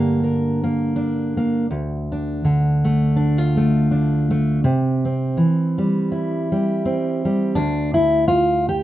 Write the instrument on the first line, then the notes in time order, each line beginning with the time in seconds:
steel-string acoustic guitar
Already playing: G2 D3 A#3 D4 G4
0.23 A#4
0.64 A#3
0.96 D4
1.37 A#3
1.70 D2
2.12 D4
2.44 D3
2.85 A3
3.16 D4
3.38 F4
3.57 A3
3.91 D4
4.31 A3
4.64 C3
5.05 C4
5.37 E3
5.78 G3
6.12 E4
6.52 G3
6.85 C4
7.25 G3
7.55 D2 D4
7.94 E4
8.28 F4
8.69 G4